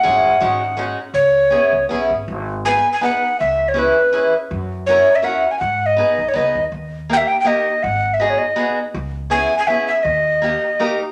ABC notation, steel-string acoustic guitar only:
X:1
M:3/4
L:1/8
Q:"Swing" 1/4=162
K:C#m
V:1 name="Steel-string acoustic guitar"
[G,CEG]2 [G,CDF] z [G,CDF] z | z2 [B,CEG] z [B,CEG] z | [K:G#m] z2 [B,DGB] z [B,DGB] z | z2 [CEGB] z [CEGB] z |
z2 [CEFA] z [CEFA] z | z2 [B,DGB] z [B,DGB] z | z2 [A,D=GA] z [A,DGA] z | z2 [B,DFG] z [B,DFG] z |
z2 [B,CEG] z [B,CEG] z | z2 [A,D=GA] z [A,DGA] z |]